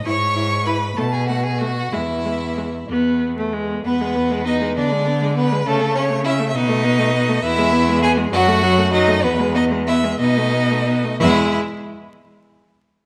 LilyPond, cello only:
\new Staff \with { instrumentName = "Cello" } { \clef bass \time 6/8 \key e \major \tempo 4. = 64 gis,4. b,4. | e,4. e,4. | e,4. d4. | cis4. b,4. |
e,4. fis,4. | e,4. b,4 r8 | e,8 r2 r8 | }